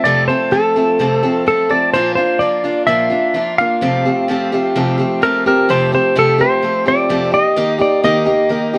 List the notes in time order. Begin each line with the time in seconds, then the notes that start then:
0.04 F2 C3 F3 A3 C4 A4 D5
0.28 F3 A3 C4 A4 C5
0.51 F3 A3 C4 A4
0.76 F3 A3 C4 A4
0.99 F2 C3 F3 A3 C4 A4
1.23 F3 A3 C4 A4
1.46 F3 A3 C4 A4
1.69 F3 A3 C4 A4 D5
1.94 A#2 F3 A#3 D4 F4 C5
2.15 A#3 D4 F4 C5
2.39 F3 A#3 D4 F4 D5
2.64 A#3 D4 F4
2.87 A#2 F3 A#3 D4 F4 E5
3.10 A#3 D4 F4
3.34 F3 A#3 D4 F4
3.58 A#3 D4 F4 F5
3.81 F2 C3 F3 A3 C4 G4
4.05 F3 A3 C4 G4
4.28 F3 A3 C4 G4
4.52 F3 A3 C4 G4
4.75 F2 C3 F3 A3 C4 G4
4.98 F3 A3 C4 G4
5.22 F3 A3 C4 G4 A#4
5.46 F3 A3 C4 G4 A#4
5.69 F2 C3 F3 A3 C4 G4 C5
5.92 F3 A3 C4 G4 C5
6.15 F2 C3 F3 A3 C4 G4 A4
6.38 F3 A3 C4 G4 C5
6.62 F3 A3 C4 G4
6.86 F3 A3 C4 G4 D5
7.09 F2 C3 F3 A3 C4 G4
7.32 A#3 D#4 G4 D#5
7.56 D#3 A#3 D#4 G4
7.78 A#3 D#4 G4 D5
8.03 D#3 A#3 D#4 G4 D#5
8.25 A#3 D#4 G4
8.49 D#3 A#3 D#4 G4
8.73 D#4 G4